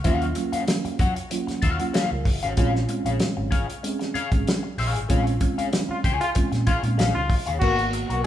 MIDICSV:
0, 0, Header, 1, 8, 480
1, 0, Start_track
1, 0, Tempo, 630915
1, 37, Time_signature, 4, 2, 24, 8
1, 6286, End_track
2, 0, Start_track
2, 0, Title_t, "Clean electric guitar"
2, 0, Program_c, 0, 27
2, 32, Note_on_c, 0, 66, 84
2, 35, Note_on_c, 0, 73, 84
2, 40, Note_on_c, 0, 77, 86
2, 191, Note_off_c, 0, 66, 0
2, 193, Note_off_c, 0, 73, 0
2, 196, Note_off_c, 0, 77, 0
2, 399, Note_on_c, 0, 77, 63
2, 401, Note_on_c, 0, 73, 54
2, 405, Note_on_c, 0, 66, 50
2, 478, Note_off_c, 0, 77, 0
2, 479, Note_off_c, 0, 73, 0
2, 481, Note_off_c, 0, 66, 0
2, 757, Note_on_c, 0, 66, 80
2, 762, Note_on_c, 0, 73, 81
2, 769, Note_on_c, 0, 78, 81
2, 867, Note_off_c, 0, 66, 0
2, 870, Note_off_c, 0, 73, 0
2, 873, Note_off_c, 0, 78, 0
2, 1230, Note_on_c, 0, 66, 76
2, 1239, Note_on_c, 0, 73, 78
2, 1242, Note_on_c, 0, 77, 82
2, 1362, Note_off_c, 0, 77, 0
2, 1364, Note_off_c, 0, 73, 0
2, 1391, Note_off_c, 0, 66, 0
2, 1472, Note_on_c, 0, 66, 81
2, 1476, Note_on_c, 0, 73, 85
2, 1483, Note_on_c, 0, 77, 104
2, 1585, Note_off_c, 0, 66, 0
2, 1587, Note_off_c, 0, 73, 0
2, 1590, Note_off_c, 0, 77, 0
2, 1847, Note_on_c, 0, 77, 67
2, 1855, Note_on_c, 0, 73, 57
2, 1856, Note_on_c, 0, 66, 51
2, 1922, Note_off_c, 0, 77, 0
2, 1926, Note_off_c, 0, 73, 0
2, 1927, Note_off_c, 0, 66, 0
2, 1958, Note_on_c, 0, 68, 76
2, 1963, Note_on_c, 0, 73, 83
2, 1965, Note_on_c, 0, 77, 101
2, 2068, Note_off_c, 0, 68, 0
2, 2070, Note_off_c, 0, 73, 0
2, 2071, Note_off_c, 0, 77, 0
2, 2325, Note_on_c, 0, 77, 50
2, 2329, Note_on_c, 0, 73, 56
2, 2335, Note_on_c, 0, 68, 50
2, 2401, Note_off_c, 0, 77, 0
2, 2403, Note_off_c, 0, 73, 0
2, 2406, Note_off_c, 0, 68, 0
2, 2668, Note_on_c, 0, 68, 81
2, 2674, Note_on_c, 0, 73, 88
2, 2676, Note_on_c, 0, 77, 75
2, 2783, Note_off_c, 0, 68, 0
2, 2786, Note_off_c, 0, 73, 0
2, 2787, Note_off_c, 0, 77, 0
2, 3152, Note_on_c, 0, 68, 86
2, 3158, Note_on_c, 0, 73, 83
2, 3158, Note_on_c, 0, 77, 91
2, 3265, Note_off_c, 0, 68, 0
2, 3268, Note_off_c, 0, 73, 0
2, 3268, Note_off_c, 0, 77, 0
2, 3639, Note_on_c, 0, 68, 78
2, 3643, Note_on_c, 0, 73, 80
2, 3647, Note_on_c, 0, 77, 93
2, 3752, Note_off_c, 0, 77, 0
2, 3758, Note_off_c, 0, 73, 0
2, 3795, Note_off_c, 0, 68, 0
2, 3872, Note_on_c, 0, 68, 85
2, 3881, Note_on_c, 0, 73, 81
2, 3882, Note_on_c, 0, 77, 82
2, 3985, Note_off_c, 0, 68, 0
2, 3989, Note_off_c, 0, 73, 0
2, 3990, Note_off_c, 0, 77, 0
2, 4246, Note_on_c, 0, 77, 61
2, 4248, Note_on_c, 0, 73, 51
2, 4253, Note_on_c, 0, 68, 45
2, 4321, Note_off_c, 0, 77, 0
2, 4323, Note_off_c, 0, 73, 0
2, 4325, Note_off_c, 0, 68, 0
2, 4598, Note_on_c, 0, 68, 79
2, 4602, Note_on_c, 0, 73, 88
2, 4610, Note_on_c, 0, 80, 87
2, 4720, Note_off_c, 0, 73, 0
2, 4723, Note_off_c, 0, 80, 0
2, 4754, Note_off_c, 0, 68, 0
2, 5073, Note_on_c, 0, 68, 80
2, 5081, Note_on_c, 0, 73, 77
2, 5085, Note_on_c, 0, 77, 89
2, 5185, Note_off_c, 0, 68, 0
2, 5189, Note_off_c, 0, 73, 0
2, 5191, Note_off_c, 0, 77, 0
2, 5309, Note_on_c, 0, 68, 81
2, 5316, Note_on_c, 0, 73, 87
2, 5316, Note_on_c, 0, 77, 89
2, 5423, Note_off_c, 0, 68, 0
2, 5427, Note_off_c, 0, 73, 0
2, 5427, Note_off_c, 0, 77, 0
2, 5678, Note_on_c, 0, 77, 64
2, 5685, Note_on_c, 0, 73, 58
2, 5690, Note_on_c, 0, 68, 47
2, 5758, Note_off_c, 0, 77, 0
2, 5761, Note_off_c, 0, 73, 0
2, 5764, Note_off_c, 0, 68, 0
2, 5794, Note_on_c, 0, 59, 75
2, 5798, Note_on_c, 0, 66, 84
2, 5799, Note_on_c, 0, 70, 89
2, 5906, Note_off_c, 0, 59, 0
2, 5908, Note_off_c, 0, 66, 0
2, 5908, Note_off_c, 0, 70, 0
2, 6161, Note_on_c, 0, 70, 56
2, 6169, Note_on_c, 0, 66, 48
2, 6173, Note_on_c, 0, 59, 44
2, 6239, Note_off_c, 0, 70, 0
2, 6243, Note_off_c, 0, 66, 0
2, 6245, Note_off_c, 0, 59, 0
2, 6286, End_track
3, 0, Start_track
3, 0, Title_t, "Trombone"
3, 0, Program_c, 1, 57
3, 4493, Note_on_c, 1, 65, 80
3, 4562, Note_off_c, 1, 65, 0
3, 4725, Note_on_c, 1, 65, 103
3, 4797, Note_off_c, 1, 65, 0
3, 5073, Note_on_c, 1, 65, 84
3, 5155, Note_off_c, 1, 65, 0
3, 5439, Note_on_c, 1, 65, 105
3, 5594, Note_off_c, 1, 65, 0
3, 5778, Note_on_c, 1, 66, 113
3, 5977, Note_off_c, 1, 66, 0
3, 6152, Note_on_c, 1, 66, 95
3, 6247, Note_off_c, 1, 66, 0
3, 6286, End_track
4, 0, Start_track
4, 0, Title_t, "Tine electric piano"
4, 0, Program_c, 2, 4
4, 36, Note_on_c, 2, 54, 102
4, 39, Note_on_c, 2, 58, 83
4, 40, Note_on_c, 2, 61, 90
4, 42, Note_on_c, 2, 65, 122
4, 207, Note_off_c, 2, 54, 0
4, 208, Note_off_c, 2, 58, 0
4, 209, Note_off_c, 2, 61, 0
4, 210, Note_off_c, 2, 65, 0
4, 277, Note_on_c, 2, 54, 78
4, 277, Note_on_c, 2, 58, 79
4, 278, Note_on_c, 2, 65, 92
4, 280, Note_on_c, 2, 61, 74
4, 775, Note_off_c, 2, 54, 0
4, 776, Note_off_c, 2, 58, 0
4, 776, Note_off_c, 2, 65, 0
4, 777, Note_off_c, 2, 61, 0
4, 1001, Note_on_c, 2, 58, 75
4, 1002, Note_on_c, 2, 54, 92
4, 1002, Note_on_c, 2, 61, 74
4, 1005, Note_on_c, 2, 65, 89
4, 1248, Note_off_c, 2, 58, 0
4, 1249, Note_off_c, 2, 54, 0
4, 1249, Note_off_c, 2, 61, 0
4, 1250, Note_off_c, 2, 65, 0
4, 1364, Note_on_c, 2, 54, 79
4, 1365, Note_on_c, 2, 58, 70
4, 1368, Note_on_c, 2, 61, 77
4, 1371, Note_on_c, 2, 65, 94
4, 1479, Note_off_c, 2, 61, 0
4, 1480, Note_off_c, 2, 65, 0
4, 1607, Note_on_c, 2, 70, 60
4, 1610, Note_on_c, 2, 65, 54
4, 1612, Note_off_c, 2, 54, 0
4, 1613, Note_off_c, 2, 58, 0
4, 1713, Note_off_c, 2, 70, 0
4, 1714, Note_off_c, 2, 65, 0
4, 1720, Note_on_c, 2, 68, 68
4, 1725, Note_on_c, 2, 63, 58
4, 1839, Note_off_c, 2, 68, 0
4, 1842, Note_off_c, 2, 63, 0
4, 1847, Note_on_c, 2, 66, 64
4, 1852, Note_on_c, 2, 61, 51
4, 1952, Note_off_c, 2, 61, 0
4, 1960, Note_on_c, 2, 56, 94
4, 1960, Note_on_c, 2, 60, 98
4, 1961, Note_on_c, 2, 61, 81
4, 1962, Note_on_c, 2, 65, 119
4, 2074, Note_off_c, 2, 66, 0
4, 2128, Note_off_c, 2, 56, 0
4, 2129, Note_off_c, 2, 60, 0
4, 2129, Note_off_c, 2, 61, 0
4, 2130, Note_off_c, 2, 65, 0
4, 2195, Note_on_c, 2, 56, 80
4, 2198, Note_on_c, 2, 60, 80
4, 2200, Note_on_c, 2, 61, 71
4, 2201, Note_on_c, 2, 65, 96
4, 2695, Note_off_c, 2, 56, 0
4, 2696, Note_off_c, 2, 60, 0
4, 2697, Note_off_c, 2, 61, 0
4, 2698, Note_off_c, 2, 65, 0
4, 2919, Note_on_c, 2, 56, 81
4, 2922, Note_on_c, 2, 61, 79
4, 2923, Note_on_c, 2, 60, 82
4, 2923, Note_on_c, 2, 68, 95
4, 3167, Note_off_c, 2, 56, 0
4, 3169, Note_off_c, 2, 60, 0
4, 3169, Note_off_c, 2, 61, 0
4, 3169, Note_off_c, 2, 68, 0
4, 3288, Note_on_c, 2, 56, 74
4, 3289, Note_on_c, 2, 60, 70
4, 3293, Note_on_c, 2, 61, 70
4, 3293, Note_on_c, 2, 68, 87
4, 3534, Note_off_c, 2, 56, 0
4, 3535, Note_off_c, 2, 60, 0
4, 3537, Note_off_c, 2, 61, 0
4, 3537, Note_off_c, 2, 68, 0
4, 3641, Note_on_c, 2, 61, 32
4, 3646, Note_on_c, 2, 65, 35
4, 3700, Note_off_c, 2, 61, 0
4, 3702, Note_off_c, 2, 65, 0
4, 3876, Note_on_c, 2, 56, 106
4, 3878, Note_on_c, 2, 60, 102
4, 3879, Note_on_c, 2, 61, 93
4, 3881, Note_on_c, 2, 65, 113
4, 4047, Note_off_c, 2, 56, 0
4, 4048, Note_off_c, 2, 60, 0
4, 4048, Note_off_c, 2, 61, 0
4, 4049, Note_off_c, 2, 65, 0
4, 4113, Note_on_c, 2, 56, 84
4, 4115, Note_on_c, 2, 60, 83
4, 4117, Note_on_c, 2, 65, 89
4, 4118, Note_on_c, 2, 61, 74
4, 4614, Note_off_c, 2, 56, 0
4, 4615, Note_off_c, 2, 60, 0
4, 4615, Note_off_c, 2, 65, 0
4, 4616, Note_off_c, 2, 61, 0
4, 4838, Note_on_c, 2, 56, 90
4, 4839, Note_on_c, 2, 60, 78
4, 4841, Note_on_c, 2, 61, 78
4, 4842, Note_on_c, 2, 65, 87
4, 5086, Note_off_c, 2, 56, 0
4, 5087, Note_off_c, 2, 60, 0
4, 5088, Note_off_c, 2, 61, 0
4, 5089, Note_off_c, 2, 65, 0
4, 5206, Note_on_c, 2, 56, 82
4, 5210, Note_on_c, 2, 60, 76
4, 5210, Note_on_c, 2, 63, 92
4, 5211, Note_on_c, 2, 61, 66
4, 5453, Note_off_c, 2, 56, 0
4, 5455, Note_off_c, 2, 60, 0
4, 5456, Note_off_c, 2, 61, 0
4, 5456, Note_off_c, 2, 63, 0
4, 5560, Note_on_c, 2, 61, 31
4, 5565, Note_on_c, 2, 68, 33
4, 5619, Note_off_c, 2, 61, 0
4, 5622, Note_off_c, 2, 68, 0
4, 5791, Note_on_c, 2, 58, 96
4, 5792, Note_on_c, 2, 59, 90
4, 5793, Note_on_c, 2, 63, 81
4, 5794, Note_on_c, 2, 66, 107
4, 6286, Note_off_c, 2, 58, 0
4, 6286, Note_off_c, 2, 59, 0
4, 6286, Note_off_c, 2, 63, 0
4, 6286, Note_off_c, 2, 66, 0
4, 6286, End_track
5, 0, Start_track
5, 0, Title_t, "Fingered electric bass"
5, 0, Program_c, 3, 33
5, 37, Note_on_c, 3, 39, 111
5, 237, Note_off_c, 3, 39, 0
5, 758, Note_on_c, 3, 42, 92
5, 864, Note_off_c, 3, 42, 0
5, 1237, Note_on_c, 3, 39, 90
5, 1343, Note_off_c, 3, 39, 0
5, 1607, Note_on_c, 3, 37, 91
5, 1700, Note_off_c, 3, 37, 0
5, 1713, Note_on_c, 3, 30, 88
5, 1848, Note_off_c, 3, 30, 0
5, 1848, Note_on_c, 3, 32, 82
5, 1940, Note_off_c, 3, 32, 0
5, 1961, Note_on_c, 3, 34, 103
5, 2160, Note_off_c, 3, 34, 0
5, 2320, Note_on_c, 3, 34, 82
5, 2416, Note_off_c, 3, 34, 0
5, 2566, Note_on_c, 3, 32, 89
5, 2765, Note_off_c, 3, 32, 0
5, 3284, Note_on_c, 3, 32, 82
5, 3378, Note_off_c, 3, 32, 0
5, 3633, Note_on_c, 3, 34, 74
5, 3762, Note_off_c, 3, 34, 0
5, 3762, Note_on_c, 3, 32, 94
5, 3857, Note_off_c, 3, 32, 0
5, 3876, Note_on_c, 3, 34, 100
5, 4077, Note_off_c, 3, 34, 0
5, 4597, Note_on_c, 3, 37, 90
5, 4703, Note_off_c, 3, 37, 0
5, 4958, Note_on_c, 3, 46, 93
5, 5054, Note_off_c, 3, 46, 0
5, 5195, Note_on_c, 3, 46, 99
5, 5293, Note_off_c, 3, 46, 0
5, 5308, Note_on_c, 3, 34, 101
5, 5418, Note_off_c, 3, 34, 0
5, 5442, Note_on_c, 3, 37, 79
5, 5537, Note_off_c, 3, 37, 0
5, 5686, Note_on_c, 3, 39, 77
5, 5780, Note_off_c, 3, 39, 0
5, 5797, Note_on_c, 3, 32, 105
5, 6103, Note_off_c, 3, 32, 0
5, 6158, Note_on_c, 3, 35, 81
5, 6254, Note_off_c, 3, 35, 0
5, 6286, End_track
6, 0, Start_track
6, 0, Title_t, "Muted clean electric guitar strokes"
6, 272, Note_on_c, 9, 29, 38
6, 348, Note_off_c, 9, 29, 0
6, 518, Note_on_c, 9, 29, 43
6, 594, Note_off_c, 9, 29, 0
6, 645, Note_on_c, 9, 29, 52
6, 721, Note_off_c, 9, 29, 0
6, 878, Note_on_c, 9, 29, 50
6, 954, Note_off_c, 9, 29, 0
6, 992, Note_on_c, 9, 29, 41
6, 1068, Note_off_c, 9, 29, 0
6, 1121, Note_on_c, 9, 29, 45
6, 1197, Note_off_c, 9, 29, 0
6, 1371, Note_on_c, 9, 29, 45
6, 1447, Note_off_c, 9, 29, 0
6, 1720, Note_on_c, 9, 29, 46
6, 1797, Note_off_c, 9, 29, 0
6, 2200, Note_on_c, 9, 29, 41
6, 2276, Note_off_c, 9, 29, 0
6, 2441, Note_on_c, 9, 29, 37
6, 2517, Note_off_c, 9, 29, 0
6, 2563, Note_on_c, 9, 29, 49
6, 2639, Note_off_c, 9, 29, 0
6, 2797, Note_on_c, 9, 29, 49
6, 2873, Note_off_c, 9, 29, 0
6, 2916, Note_on_c, 9, 29, 46
6, 2992, Note_off_c, 9, 29, 0
6, 3039, Note_on_c, 9, 29, 46
6, 3115, Note_off_c, 9, 29, 0
6, 3289, Note_on_c, 9, 29, 38
6, 3365, Note_off_c, 9, 29, 0
6, 3522, Note_on_c, 9, 29, 46
6, 3598, Note_off_c, 9, 29, 0
6, 3761, Note_on_c, 9, 29, 55
6, 3837, Note_off_c, 9, 29, 0
6, 4119, Note_on_c, 9, 29, 39
6, 4196, Note_off_c, 9, 29, 0
6, 4358, Note_on_c, 9, 29, 49
6, 4434, Note_off_c, 9, 29, 0
6, 4480, Note_on_c, 9, 29, 37
6, 4556, Note_off_c, 9, 29, 0
6, 4726, Note_on_c, 9, 29, 40
6, 4802, Note_off_c, 9, 29, 0
6, 4830, Note_on_c, 9, 29, 48
6, 4906, Note_off_c, 9, 29, 0
6, 4958, Note_on_c, 9, 29, 48
6, 5034, Note_off_c, 9, 29, 0
6, 5204, Note_on_c, 9, 29, 54
6, 5280, Note_off_c, 9, 29, 0
6, 5553, Note_on_c, 9, 29, 35
6, 5629, Note_off_c, 9, 29, 0
6, 5920, Note_on_c, 9, 29, 54
6, 5996, Note_off_c, 9, 29, 0
6, 6036, Note_on_c, 9, 29, 45
6, 6113, Note_off_c, 9, 29, 0
6, 6286, End_track
7, 0, Start_track
7, 0, Title_t, "Muted fingered electric bass strokes"
7, 400, Note_on_c, 9, 29, 39
7, 476, Note_off_c, 9, 29, 0
7, 644, Note_on_c, 9, 29, 43
7, 720, Note_off_c, 9, 29, 0
7, 1123, Note_on_c, 9, 29, 47
7, 1200, Note_off_c, 9, 29, 0
7, 2435, Note_on_c, 9, 29, 44
7, 2511, Note_off_c, 9, 29, 0
7, 3153, Note_on_c, 9, 29, 49
7, 3229, Note_off_c, 9, 29, 0
7, 4246, Note_on_c, 9, 29, 39
7, 4323, Note_off_c, 9, 29, 0
7, 4478, Note_on_c, 9, 29, 41
7, 4554, Note_off_c, 9, 29, 0
7, 6286, End_track
8, 0, Start_track
8, 0, Title_t, "Drums"
8, 33, Note_on_c, 9, 42, 84
8, 38, Note_on_c, 9, 36, 93
8, 109, Note_off_c, 9, 42, 0
8, 114, Note_off_c, 9, 36, 0
8, 165, Note_on_c, 9, 42, 37
8, 241, Note_off_c, 9, 42, 0
8, 267, Note_on_c, 9, 42, 60
8, 343, Note_off_c, 9, 42, 0
8, 403, Note_on_c, 9, 42, 53
8, 479, Note_off_c, 9, 42, 0
8, 514, Note_on_c, 9, 42, 80
8, 520, Note_on_c, 9, 38, 107
8, 590, Note_off_c, 9, 42, 0
8, 596, Note_off_c, 9, 38, 0
8, 648, Note_on_c, 9, 42, 38
8, 724, Note_off_c, 9, 42, 0
8, 754, Note_on_c, 9, 42, 78
8, 756, Note_on_c, 9, 36, 98
8, 830, Note_off_c, 9, 42, 0
8, 832, Note_off_c, 9, 36, 0
8, 885, Note_on_c, 9, 42, 46
8, 961, Note_off_c, 9, 42, 0
8, 996, Note_on_c, 9, 42, 80
8, 1072, Note_off_c, 9, 42, 0
8, 1129, Note_on_c, 9, 42, 40
8, 1137, Note_on_c, 9, 38, 36
8, 1205, Note_off_c, 9, 42, 0
8, 1213, Note_off_c, 9, 38, 0
8, 1234, Note_on_c, 9, 42, 78
8, 1238, Note_on_c, 9, 36, 88
8, 1310, Note_off_c, 9, 42, 0
8, 1314, Note_off_c, 9, 36, 0
8, 1366, Note_on_c, 9, 42, 51
8, 1442, Note_off_c, 9, 42, 0
8, 1478, Note_on_c, 9, 42, 74
8, 1486, Note_on_c, 9, 38, 102
8, 1554, Note_off_c, 9, 42, 0
8, 1562, Note_off_c, 9, 38, 0
8, 1715, Note_on_c, 9, 36, 86
8, 1719, Note_on_c, 9, 46, 75
8, 1791, Note_off_c, 9, 36, 0
8, 1795, Note_off_c, 9, 46, 0
8, 1847, Note_on_c, 9, 42, 55
8, 1923, Note_off_c, 9, 42, 0
8, 1955, Note_on_c, 9, 42, 83
8, 1959, Note_on_c, 9, 36, 92
8, 2031, Note_off_c, 9, 42, 0
8, 2035, Note_off_c, 9, 36, 0
8, 2096, Note_on_c, 9, 38, 44
8, 2173, Note_off_c, 9, 38, 0
8, 2196, Note_on_c, 9, 42, 60
8, 2272, Note_off_c, 9, 42, 0
8, 2327, Note_on_c, 9, 42, 53
8, 2403, Note_off_c, 9, 42, 0
8, 2431, Note_on_c, 9, 42, 72
8, 2437, Note_on_c, 9, 38, 92
8, 2507, Note_off_c, 9, 42, 0
8, 2513, Note_off_c, 9, 38, 0
8, 2678, Note_on_c, 9, 36, 82
8, 2678, Note_on_c, 9, 42, 73
8, 2754, Note_off_c, 9, 36, 0
8, 2754, Note_off_c, 9, 42, 0
8, 2812, Note_on_c, 9, 42, 47
8, 2888, Note_off_c, 9, 42, 0
8, 2922, Note_on_c, 9, 42, 78
8, 2998, Note_off_c, 9, 42, 0
8, 3048, Note_on_c, 9, 42, 35
8, 3056, Note_on_c, 9, 38, 40
8, 3125, Note_off_c, 9, 42, 0
8, 3132, Note_off_c, 9, 38, 0
8, 3160, Note_on_c, 9, 42, 73
8, 3236, Note_off_c, 9, 42, 0
8, 3285, Note_on_c, 9, 36, 91
8, 3287, Note_on_c, 9, 42, 49
8, 3361, Note_off_c, 9, 36, 0
8, 3363, Note_off_c, 9, 42, 0
8, 3404, Note_on_c, 9, 42, 79
8, 3412, Note_on_c, 9, 38, 107
8, 3480, Note_off_c, 9, 42, 0
8, 3489, Note_off_c, 9, 38, 0
8, 3640, Note_on_c, 9, 46, 78
8, 3716, Note_off_c, 9, 46, 0
8, 3772, Note_on_c, 9, 42, 53
8, 3848, Note_off_c, 9, 42, 0
8, 3878, Note_on_c, 9, 42, 90
8, 3879, Note_on_c, 9, 36, 94
8, 3954, Note_off_c, 9, 42, 0
8, 3955, Note_off_c, 9, 36, 0
8, 4009, Note_on_c, 9, 42, 38
8, 4085, Note_off_c, 9, 42, 0
8, 4113, Note_on_c, 9, 42, 61
8, 4115, Note_on_c, 9, 36, 79
8, 4189, Note_off_c, 9, 42, 0
8, 4191, Note_off_c, 9, 36, 0
8, 4250, Note_on_c, 9, 42, 50
8, 4326, Note_off_c, 9, 42, 0
8, 4357, Note_on_c, 9, 42, 80
8, 4363, Note_on_c, 9, 38, 99
8, 4433, Note_off_c, 9, 42, 0
8, 4439, Note_off_c, 9, 38, 0
8, 4597, Note_on_c, 9, 36, 82
8, 4599, Note_on_c, 9, 42, 73
8, 4673, Note_off_c, 9, 36, 0
8, 4675, Note_off_c, 9, 42, 0
8, 4724, Note_on_c, 9, 42, 52
8, 4800, Note_off_c, 9, 42, 0
8, 4831, Note_on_c, 9, 42, 87
8, 4839, Note_on_c, 9, 36, 91
8, 4907, Note_off_c, 9, 42, 0
8, 4915, Note_off_c, 9, 36, 0
8, 4963, Note_on_c, 9, 42, 39
8, 4971, Note_on_c, 9, 38, 38
8, 5039, Note_off_c, 9, 42, 0
8, 5047, Note_off_c, 9, 38, 0
8, 5073, Note_on_c, 9, 42, 78
8, 5076, Note_on_c, 9, 36, 82
8, 5149, Note_off_c, 9, 42, 0
8, 5152, Note_off_c, 9, 36, 0
8, 5200, Note_on_c, 9, 42, 48
8, 5276, Note_off_c, 9, 42, 0
8, 5318, Note_on_c, 9, 42, 77
8, 5326, Note_on_c, 9, 38, 102
8, 5394, Note_off_c, 9, 42, 0
8, 5403, Note_off_c, 9, 38, 0
8, 5551, Note_on_c, 9, 36, 91
8, 5555, Note_on_c, 9, 46, 77
8, 5627, Note_off_c, 9, 36, 0
8, 5631, Note_off_c, 9, 46, 0
8, 5679, Note_on_c, 9, 42, 51
8, 5755, Note_off_c, 9, 42, 0
8, 5792, Note_on_c, 9, 49, 75
8, 5795, Note_on_c, 9, 36, 92
8, 5868, Note_off_c, 9, 49, 0
8, 5871, Note_off_c, 9, 36, 0
8, 5924, Note_on_c, 9, 42, 35
8, 6000, Note_off_c, 9, 42, 0
8, 6034, Note_on_c, 9, 42, 61
8, 6110, Note_off_c, 9, 42, 0
8, 6164, Note_on_c, 9, 42, 46
8, 6240, Note_off_c, 9, 42, 0
8, 6286, End_track
0, 0, End_of_file